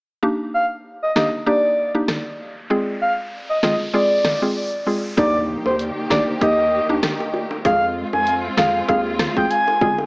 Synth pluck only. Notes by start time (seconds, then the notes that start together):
0.23 A#3 D4 D#4 G4
1.15 A#3 D4 D#4 G4
1.46 A#3 D4 D#4 G4
1.95 A#3 D4 D#4 G4
2.70 G#3 C4 F4 G#4
3.63 G#3 C4 F4 G#4
3.94 G#3 C4 F4 G#4
4.42 G#3 C4 F4 G#4
4.87 G#3 C4 F4 G#4
5.17 A#3 D4 D#4 G4
6.10 A#3 D4 D#4 G4
6.41 A#3 D#4 G4
6.89 A#3 D4 D#4 G4
7.65 G#3 C4 F4 G#4
8.57 G#3 C4 F4 G#4
8.89 G#3 C4 F4 G#4
9.37 G#3 C4 F4 G#4
9.82 G#3 C4 F4 G#4